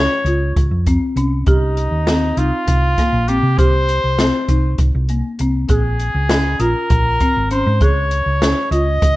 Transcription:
Already playing: marimba C#4, trumpet C#5
0.24 fingered electric bass C#2, marimba F4, closed hi-hat
0.56 fingered electric bass C#2, kick, closed hi-hat
0.71 fingered electric bass F2
0.86 marimba C4, kick, closed hi-hat
1.16 fingered electric bass C2, marimba C#4, closed hi-hat
1.46 fingered electric bass C2, trumpet D#4, marimba G4, kick, closed hi-hat
1.77 closed hi-hat
1.91 fingered electric bass D#2
2.07 marimba C4, snare, closed hi-hat
2.37 fingered electric bass C2, marimba D#4, trumpet F4, closed hi-hat
2.67 fingered electric bass C2, kick, closed hi-hat
2.98 marimba A#3, kick, snare, closed hi-hat
3.13 fingered electric bass A#1
3.28 marimba C4, trumpet G4, closed hi-hat
3.43 fingered electric bass C3
3.58 fingered electric bass C2, marimba G4, trumpet C5, kick, closed hi-hat
3.88 closed hi-hat
4.04 fingered electric bass C2
4.19 marimba C4, snare, closed hi-hat
4.48 fingered electric bass C2, marimba D#4, kick, closed hi-hat
4.78 fingered electric bass C2, kick, closed hi-hat
4.95 fingered electric bass C2
5.09 marimba A#3, closed hi-hat
5.39 fingered electric bass C2, marimba C4, closed hi-hat
5.69 fingered electric bass A#1, marimba G#4, trumpet G#4, kick, closed hi-hat
5.99 closed hi-hat
6.14 fingered electric bass C#2
6.29 marimba C#4, snare, closed hi-hat
6.60 fingered electric bass A#1, marimba F4, trumpet A#4, closed hi-hat
6.90 fingered electric bass A#1, kick, closed hi-hat
7.20 marimba C4, kick, closed hi-hat
7.36 fingered electric bass G#1
7.51 marimba C#4, trumpet C5, closed hi-hat
7.67 fingered electric bass G#2
7.81 fingered electric bass C#2, marimba G#4, trumpet C#5, kick, closed hi-hat
8.11 closed hi-hat
8.26 fingered electric bass C#2
8.42 marimba C#4, snare, closed hi-hat
8.71 fingered electric bass C#2, marimba F4, trumpet D#5, closed hi-hat
9.02 fingered electric bass C#2, kick, closed hi-hat

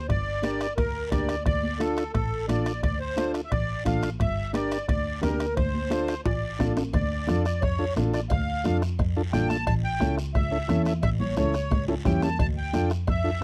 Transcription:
0.09 double bass G1, accordion D5, bombo low, bombo rim, high timbale, long guiro
0.42 transistor combo organ D4 G4 A#4, bombo rim, high conga, high timbale, short guiro
0.60 bombo rim, high timbale, short guiro
0.77 double bass D2, accordion A#4, bombo low, bombo rim, high conga, high timbale, long guiro
1.11 double bass D2, transistor combo organ D4 G4 A#4, accordion D5, bombo low, bombo rim, high conga, high timbale, short guiro
1.29 bombo rim, high timbale, short guiro
1.46 double bass D2, accordion D5, bombo low, bombo rim, high conga, high timbale, long guiro
1.63 high conga
1.79 transistor combo organ D4 F4 A4, accordion A4, bombo rim, high conga, high timbale, short guiro
1.97 bombo rim, high timbale, short guiro
2.13 double bass A1, accordion A4, bombo low, bombo rim, high conga, high timbale, long guiro
2.48 double bass A1, transistor combo organ D4 F4 A4, accordion D5, bombo rim, high conga, high timbale, short guiro
2.66 bombo rim, high timbale, short guiro
2.83 double bass D2, accordion D5, bombo low, bombo rim, high conga, high timbale, long guiro
3.00 accordion C5
3.16 transistor combo organ D4 F4 A4, bombo rim, high conga, high timbale, short guiro
3.34 bombo rim, high timbale, short guiro
3.45 accordion E5
3.51 double bass A1, accordion D5, bombo low, bombo rim, high conga, high timbale, long guiro
3.85 double bass A1, transistor combo organ D4 F4 A4, accordion F5, bombo low, bombo rim, high conga, high timbale, short guiro
4.03 bombo rim, high timbale, short guiro
4.20 double bass G1, accordion E5, bombo low, bombo rim, high conga, high timbale, long guiro
4.53 transistor combo organ D4 G4 A#4, accordion D5, bombo rim, high conga, high timbale, short guiro
4.71 bombo rim, high timbale, short guiro
4.88 double bass D2, accordion D5, bombo low, bombo rim, high conga, high timbale, long guiro
5.22 double bass D2, transistor combo organ D4 G4 A#4, accordion A#4, bombo rim, high conga, high timbale, low timbale, short guiro
5.40 bombo rim, high conga, high timbale, short guiro
5.56 double bass D2, accordion C5, bombo low, bombo rim, high conga, high timbale, long guiro
5.74 high conga
5.90 transistor combo organ D4 F4 A4, bombo rim, high conga, high timbale, short guiro
6.08 bombo rim, high timbale, short guiro
6.25 double bass A1, accordion D5, bombo low, bombo rim, high conga, high timbale, long guiro
6.59 double bass A1, transistor combo organ D4 F4 A4, bombo low, bombo rim, high conga, low timbale, short guiro
6.77 bombo rim, low timbale, short guiro
6.93 double bass D2, accordion D5, bombo low, bombo rim, cowbell, high conga, long guiro
7.27 double bass F2, transistor combo organ D4 F4 A4, bombo rim, high conga, short guiro
7.44 accordion D5, bombo rim, short guiro
7.61 double bass F2, accordion C#5, bombo low, bombo rim, cowbell, high conga, long guiro
7.79 transistor combo organ D4 F4 A4
7.96 double bass A1, transistor combo organ D4 F4 A4, bombo rim, high conga, low timbale, short guiro
8.13 accordion D5, bombo rim, short guiro
8.30 double bass D2, accordion F5, bombo low, bombo rim, cowbell, long guiro
8.64 double bass F2, transistor combo organ D4 F4 A4, bombo rim, high conga, short guiro
8.82 bombo rim, short guiro
8.99 double bass F2, bombo low, bombo rim, cowbell, high conga, long guiro
9.16 transistor combo organ D4 F4 A4
9.32 double bass A1, transistor combo organ D4 F4 A4, accordion G5, bombo rim, high conga, low conga, short guiro
9.48 accordion A5, bombo rim, high conga, short guiro
9.66 double bass A1, accordion A5, bombo low, bombo rim, cowbell, high conga, long guiro
9.84 accordion G5
10.00 double bass C#2, transistor combo organ C#4 E4 A4, bombo rim, high conga, short guiro
10.18 bombo rim, short guiro
10.34 double bass C#2, accordion E5, bombo low, bombo rim, cowbell, high conga, long guiro
10.51 transistor combo organ C#4 E4 A4
10.68 double bass E2, transistor combo organ C#4 E4 A4, bombo rim, high conga, low timbale, short guiro
10.85 accordion E5, bombo rim, high conga, short guiro
11.02 double bass A1, accordion E5, bombo low, bombo rim, cowbell, high conga, long guiro
11.20 accordion C#5, high conga, low conga
11.37 double bass C#2, transistor combo organ C#4 E4 A4, accordion C#5, bombo rim, high conga, short guiro
11.54 bombo rim, short guiro
11.71 double bass C#2, bombo low, bombo rim, cowbell, high conga, long guiro
11.88 transistor combo organ C#4 E4 A4, high timbale
12.05 double bass E2, transistor combo organ C#4 E4 G4, accordion G5, bombo low, bombo rim, high conga, low conga, high timbale, short guiro
12.22 accordion A5, bombo rim, high conga, low timbale, short guiro
12.39 double bass D2, accordion A5, bombo low, bombo rim, cowbell, high conga, long guiro
12.58 accordion G5
12.73 double bass F2, transistor combo organ D4 F4 A4, bombo rim, high conga, short guiro
12.90 bombo rim, short guiro
13.07 double bass F2, accordion E5, bombo low, bombo rim, cowbell, high conga, long guiro
13.24 transistor combo organ D4 F4 A4

